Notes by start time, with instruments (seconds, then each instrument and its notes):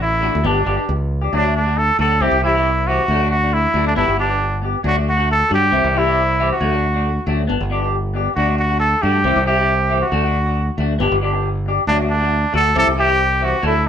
Already playing: fingered electric bass A1
0.02 muted trumpet E4
0.21 clean electric guitar A3 D4 F#4
0.35 fingered electric bass D2
0.44 fingered electric bass G1, clean electric guitar B3 D4 G4, muted trumpet D4
0.65 fingered electric bass G1, clean electric guitar B3 D4 G4
0.76 clean electric guitar D4 G4
0.89 fingered electric bass C#2
1.22 clean electric guitar D4 G4
1.33 fingered electric bass D2, clean electric guitar F#3 A3 D4 F#4, muted trumpet D4
1.43 clean electric guitar A3 D4 F#4
1.57 muted trumpet D4
1.65 clean electric guitar A3 D4 F#4
1.78 muted trumpet A4
1.98 fingered electric bass D2, clean electric guitar F#3 A3 D4 F#4, muted trumpet A4
2.20 fingered electric bass C2, clean electric guitar C4 E4 G4, muted trumpet G4, muted clean electric guitar stroke
2.31 fingered electric bass C2
2.42 clean electric guitar E3 C4 E4 G4, muted trumpet E4
2.55 clean electric guitar C4 E4 G4
2.87 clean electric guitar E3 C4 E4 G4, muted trumpet F#4
3.08 fingered electric bass D2, clean electric guitar F#3 A3 D4 F#4
3.20 clean electric guitar A3 D4 F#4
3.31 muted trumpet F#4
3.44 clean electric guitar A3 D4
3.54 muted trumpet E4
3.74 fingered electric bass D2, clean electric guitar F#3 A3 D4 F#4
3.87 muted trumpet D4
3.95 fingered electric bass G1, clean electric guitar B3 D4 G4, muted trumpet E4
4.08 fingered electric bass G1
4.17 clean electric guitar B3 D4 G4, muted trumpet D4
4.30 clean electric guitar D4 G4
4.62 clean electric guitar B3 G4, muted clean electric guitar stroke
4.83 fingered electric bass D2, clean electric guitar F#3 A3 D4 F#4
4.87 muted trumpet F#4
4.96 clean electric guitar A3 D4 F#4
5.10 muted trumpet F#4
5.17 clean electric guitar A3 D4 F#4
5.32 muted trumpet A4
5.49 fingered electric bass G2, clean electric guitar F#3 F#4, muted clean electric guitar stroke
5.54 muted trumpet G4
5.71 fingered electric bass C2, clean electric guitar E3 C4 E4, muted clean electric guitar stroke
5.84 fingered electric bass C2
5.93 clean electric guitar E3 C4 E4 G4
5.98 muted trumpet E4
6.06 clean electric guitar C4 E4 G4
6.39 clean electric guitar E3 C4 E4 G4
6.53 muted trumpet F#4
6.60 fingered electric bass D2, clean electric guitar F#3 A3, muted clean electric guitar stroke
6.71 clean electric guitar A3 D4 F#4
6.94 clean electric guitar A3 D4 F#4
7.27 fingered electric bass D2, clean electric guitar F#3 A3 D4 F#4
7.47 fingered electric bass G1, clean electric guitar B3 D4, muted clean electric guitar stroke
7.61 fingered electric bass G1
7.70 clean electric guitar B3 D4 G4
7.81 clean electric guitar D4 G4
8.14 clean electric guitar B3 D4 G4
8.36 fingered electric bass D2, clean electric guitar A3 D4 F#4, muted trumpet F#4
8.47 clean electric guitar D4 F#4
8.58 muted trumpet F#4
8.69 clean electric guitar D4 F#4
8.80 muted trumpet A4
9.02 fingered electric bass G2, clean electric guitar A3 D4 F#4, muted trumpet G4
9.24 fingered electric bass C2, clean electric guitar E3 C4 E4 G4
9.36 fingered electric bass C2
9.46 clean electric guitar C4 E4 G4, muted trumpet G4
9.57 clean electric guitar C4 E4 G4
9.89 clean electric guitar E3 C4 E4 G4
10.02 muted trumpet F#4
10.11 fingered electric bass D2, clean electric guitar A3 D4 F#4
10.23 clean electric guitar D4 F#4
10.46 clean electric guitar D4 F#4
10.78 fingered electric bass D2, clean electric guitar A3 D4 F#4
10.99 fingered electric bass G1, clean electric guitar B3 D4 G4
11.12 fingered electric bass G1
11.21 clean electric guitar B3 D4 G4
11.33 clean electric guitar D4 G4
11.66 clean electric guitar D4 G4, muted clean electric guitar stroke
11.87 fingered electric bass D2, clean electric guitar F#3 A3 D4 F#4, muted trumpet D4
11.99 clean electric guitar A3 D4 F#4
12.10 muted trumpet D4
12.20 clean electric guitar A3 D4 F#4
12.53 fingered electric bass D2, clean electric guitar A3 D4 F#4, muted trumpet A4
12.74 fingered electric bass C2, clean electric guitar E3 C4 E4 G4
12.79 muted trumpet A4
12.87 fingered electric bass C2
12.96 clean electric guitar E3 C4 E4 G4, muted trumpet G4
13.07 clean electric guitar C4 G4, muted clean electric guitar stroke
13.40 clean electric guitar E3 C4 E4 G4
13.45 muted trumpet F#4
13.62 fingered electric bass D2, clean electric guitar F#3 A3 D4 A4
13.67 muted trumpet E4
13.73 clean electric guitar A3 A4, muted clean electric guitar stroke